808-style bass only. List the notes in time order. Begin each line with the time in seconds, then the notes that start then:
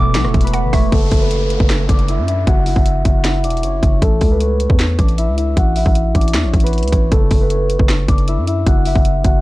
Already playing: E1
0.15 B1
0.25 E1
0.34 E1
0.63 G#1
0.73 E1
0.92 F#1
1.12 F#1
1.60 F#1
1.89 F#1
2.18 F#2
2.47 F#1
2.76 F#1
3.05 F#1
3.44 E1
3.63 F#1
3.83 F#1
4.02 A1
4.21 C#2
4.70 E2
4.99 A1
5.28 C#2
5.57 A1
5.86 A1
6.15 A1
6.34 E2
6.44 A1
6.54 A1
6.83 C#2
6.92 A1
7.12 F#1
7.31 F#1
7.79 F#1
8.08 F#1
8.38 F#2
8.66 F#1
8.95 F#1
9.25 F#1